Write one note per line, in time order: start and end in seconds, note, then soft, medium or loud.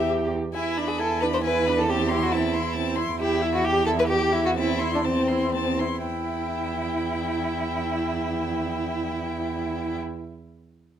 0.00 0.32 E2 soft
0.00 0.31 G4 soft
0.00 0.32 G4 soft
0.54 3.16 E2 soft
0.54 0.89 E4 soft
0.54 0.79 E4 soft
0.54 0.80 G#5 soft
0.78 1.01 D4 soft
0.78 1.01 B5 soft
0.88 0.99 G#4 soft
0.98 1.24 E4 soft
0.98 1.21 A4 medium
0.98 1.23 G#5 soft
1.21 1.44 D4 soft
1.21 1.26 B4 medium
1.21 1.43 B5 soft
1.33 1.37 C5 medium
1.44 1.69 E4 soft
1.44 1.79 B4 medium
1.44 1.68 G#5 soft
1.66 1.89 D4 soft
1.66 1.87 B5 soft
1.77 1.91 A4 soft
1.88 2.14 C4 soft
1.88 2.24 G4 soft
1.88 2.10 A5 soft
2.09 2.35 E4 soft
2.09 2.33 C6 soft
2.23 2.34 F#4 soft
2.31 2.57 C4 soft
2.31 2.98 E4 soft
2.31 2.55 A5 soft
2.54 2.76 E4 soft
2.54 2.75 C6 soft
2.75 3.00 C4 soft
2.75 2.98 A5 soft
2.96 3.20 E4 soft
2.96 3.19 C6 soft
3.20 5.79 E2 soft
3.20 3.51 E4 medium
3.20 3.44 G4 soft
3.20 3.44 G5 soft
3.42 3.66 E4 soft
3.42 3.67 E5 soft
3.55 3.66 F#4 soft
3.64 3.88 G4 soft
3.64 3.85 G4 medium
3.64 3.89 G5 soft
3.86 4.09 E4 soft
3.86 3.91 A4 medium
3.86 4.08 E5 soft
3.99 4.03 B4 medium
4.08 4.43 G4 medium
4.08 4.34 G4 soft
4.08 4.34 G5 soft
4.33 4.56 E4 soft
4.33 4.56 E5 soft
4.46 4.50 F#4 medium
4.56 4.83 C4 soft
4.56 4.92 E4 medium
4.56 4.80 A5 soft
4.79 5.06 E4 soft
4.79 5.06 C6 soft
4.95 4.99 D4 soft
5.04 5.31 C4 soft
5.04 5.79 C4 soft
5.04 5.29 A5 soft
5.28 5.54 E4 soft
5.28 5.54 C6 soft
5.54 5.83 C4 soft
5.54 5.81 A5 soft
5.79 6.07 E4 soft
5.79 6.05 C6 soft
6.06 9.98 E2 soft
6.06 9.98 E4 soft
6.06 9.97 G5 soft